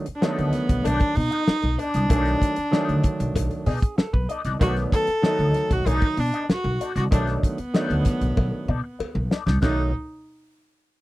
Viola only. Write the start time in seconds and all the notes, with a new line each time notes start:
0.15 D4
0.23 B3
0.85 D4
1.16 D#4
1.79 D4
4.62 F#4
4.93 A4
5.73 F#4
5.87 D#4
6.19 D4
6.51 F#4
6.97 F#4
7.13 D4
7.45 B3
9.62 D#4